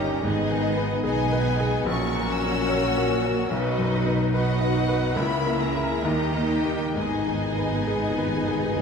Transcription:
Already playing: double bass section G1, grand piano D#2 A#2 C#4 G4 C#5, cello section G2, french horn section G3 C#4, viola section C#4 D#4, violin section G4 D#5 A#5
0.23 double bass section G#1, grand piano G#2, cello section G#2, timpani G#2, french horn section G#3 B3, viola section B3 D#4, violin section G#4 D#5
0.50 grand piano D#3
0.77 grand piano B3
1.04 double bass section B1, cello section B2, french horn section G#3, viola section B3 D#4, grand piano G#4, violin section G#4 D#5 G#5
1.08 french horn section B3
1.32 grand piano B4
1.60 grand piano G#4
1.86 grand piano A#1, double bass section A#1, cello section A#2, french horn section F#3 C#4, viola section C#4 F#4, violin section F#4 A#4 C#6
2.15 grand piano A#2
2.30 violin section E6
2.44 grand piano C#4
2.69 grand piano C#5
2.98 grand piano F#4
3.25 grand piano C#5
3.51 grand piano B1, double bass section B1, cello section B2, french horn section F#3 D#4, viola section D#4 F#4, violin section B4 D#5
3.78 grand piano F#2
4.06 grand piano D#4
4.33 french horn section F#3 D#4, viola section D#4 F#4, violin section B4 D#5 F#5, grand piano B4
4.61 grand piano D#5
4.89 grand piano B4
5.16 grand piano C#2, double bass section C#2, cello section C#3, french horn section E3 E4, viola section A#3 E4, violin section A#4 E5 B5
5.46 grand piano A#3
5.59 violin section G#4 A#5
5.75 grand piano E4 A#4
6.02 double bass section D#2, grand piano D#2, cello section D#3, french horn section G3 D#4, viola section A#3 D#4, violin section G4 D#5
6.35 grand piano A#3
6.49 violin section G5
6.64 grand piano D#4 G4
6.95 double bass section G#1, timpani G#2, cello section G#2, grand piano G#2, french horn section B3 D#4, viola section B3 D#4, violin section G#4 D#5 G#5
7.13 timpani G#2
7.21 timpani G#2
7.27 timpani G#2, grand piano D#3
7.37 timpani G#2
7.45 timpani G#2
7.53 timpani G#2
7.58 timpani G#2, grand piano B3
7.70 timpani G#2
7.78 timpani G#2
7.87 grand piano G#4
7.95 timpani G#2
8.03 timpani G#2
8.11 timpani G#2
8.18 timpani G#2, grand piano B4
8.27 timpani G#2
8.36 timpani G#2
8.43 timpani G#2
8.49 timpani G#2, grand piano G#4
8.59 timpani G#2
8.68 timpani G#2
8.76 timpani G#2

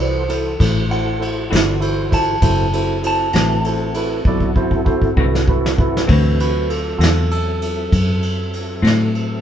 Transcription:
Already playing: fingered electric bass C2, tonewheel organ E3 F#4 A4 C5
0.00 tine electric piano E4 F#4 A4 B4, clean electric guitar C5, ride
0.29 tine electric piano E4 F#4 A4 C5, clean electric guitar A4, ride
0.59 fingered electric bass A1, tine electric piano E4 F#4 A4 C5, kick, snare, ride
0.89 tine electric piano E4 F#4 A4 C5, clean electric guitar F#5, ride
1.20 tine electric piano E4 F#4 A4 C5, ride
1.50 fingered electric bass G1, clean electric guitar D3 A3 C4 F#4, tine electric piano E4 F#4 A4 D5, ride
1.55 snare
1.80 tine electric piano E4 F#4 A4 C5, ride
2.09 tine electric piano E4 F#4 A4 C5, kick, ride
2.14 clean electric guitar A5
2.41 fingered electric bass F#1, tonewheel organ C4 E4 F#4 A4, tine electric piano E4 F#4 A4 C5, kick, ride
2.73 tine electric piano E4 F#4 A4 C5, ride
3.03 tine electric piano E4 F#4 A4 C5, ride
3.07 clean electric guitar A5
3.33 fingered electric bass A1, clean electric guitar D3 A3 C4 F#4, tine electric piano E4 F#4 A4 B4, snare, ride
3.65 tine electric piano E4 F#4 A4 C5, ride
3.94 tine electric piano E4 F#4 A4 B4, ride
4.25 fingered electric bass B1, tine electric piano E4 F#4 A4 D5, kick
4.40 kick
4.56 tine electric piano E4 F#4 A4 C5, kick
4.71 kick
4.85 tine electric piano E4 F#4 A4 C5, kick
5.02 kick
5.17 fingered electric bass C2, clean electric guitar D3 A3 C4 F#4, tine electric piano E4 F#4 A4 B4, kick
5.35 snare
5.48 tine electric piano E4 F#4 A4 B4, kick
5.66 snare
5.78 tine electric piano E4 F#4 A4 B4, kick
5.97 snare
6.06 fingered electric bass D2, clean electric guitar D3 A3 C4 F#4, tine electric piano E3 A#4, tonewheel organ F#3 C4 A4 E5, kick, crash
6.11 tine electric piano F#3 C4 F#4 B4
6.40 tine electric piano F#4 B4, ride
6.69 tine electric piano F4 A4, ride
6.98 fingered electric bass E2, clean electric guitar D3 A3 C4 F#4, tine electric piano F4 A4, ride
7.03 snare
7.31 tine electric piano A4, ride
7.62 ride
7.92 fingered electric bass F#2, kick, ride
8.23 ride
8.53 ride
8.82 fingered electric bass A2, clean electric guitar D3 A3 C4 F#4, ride
8.87 snare
9.15 ride

